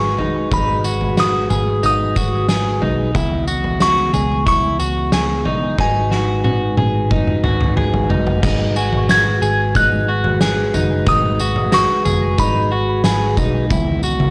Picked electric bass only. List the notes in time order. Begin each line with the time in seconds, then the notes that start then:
Already playing: G#1
0.52 G#1
1.51 G#1
2.16 G#1
2.82 B1
3.15 C#2
4.13 C#2
4.80 C#2
5.78 G#1
6.77 G#1
7.44 G#1
8.10 F#1
8.43 G#1
8.92 G#1
9.42 G#1
9.75 G#1
10.75 F#1
11.07 G#1
12.06 F#1
12.39 G#1
13.05 G#1
13.37 B1
13.71 C#2
14.20 C#2